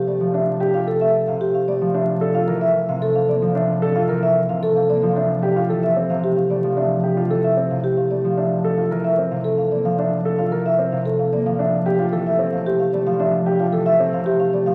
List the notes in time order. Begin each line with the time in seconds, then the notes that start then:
Already playing: C3 F3 F5
0.07 A3 D5
0.21 F3
0.34 D4 E5
0.60 G4
0.74 F4 F5
0.87 A4
1.01 E5
1.28 C3 F5
1.41 G4
1.54 F5
1.68 A3 D5
1.81 F3
1.94 D4 E5
2.21 A4
2.34 F4 F5
2.48 E3 A#4
2.61 E5
2.89 C3 F5
3.02 A4
3.16 F5
3.29 A#3 D5
3.42 F3
3.55 D4 E5
3.82 A4
3.95 F4 F5
4.09 E3 A#4
4.23 E5
4.49 C3 F5
4.63 A4
4.76 F5
4.89 A#3 D5
5.03 F3
5.16 D4 E5
5.43 G4
5.56 F4 F5
5.70 E3 A4
5.83 E5
5.96 C4
6.10 C3 F5
6.24 G4
6.37 F5
6.50 A3 D5
6.64 F3
6.77 D4 E5
7.04 G4
7.17 F4 F5
7.30 E3 A4
7.44 E5
7.57 C4
7.71 C3 F5
7.84 G4
7.97 F5
8.11 A3 D5
8.24 F3
8.37 D4 E5
8.64 A4
8.77 F4 F5
8.91 E3 A#4
9.04 E5
9.18 C4
9.31 C3 F5
9.44 A4
9.58 F5
9.71 A#3 D5
9.85 F3 F5
9.98 D4 E5
10.25 A4
10.39 F4 F5
10.52 E3 A#4
10.66 E5
10.79 C4
10.92 C3 F5
11.06 A4
11.19 F5
11.33 A#3 D5
11.46 F3 F5
11.59 D4 E5
11.86 G4
11.99 F4 F5
12.12 E3 A4
12.26 E5
12.39 A3 C4
12.53 C3 F5
12.66 G4
12.80 F5
12.93 A3 D5
13.06 F3 F5
13.19 D4 E5
13.46 G4
13.59 F4 F5
13.73 E3 A4
13.86 E5
14.00 A3 C4
14.13 C3 F5
14.26 G4
14.40 F5
14.53 A3 D5
14.66 F3 F5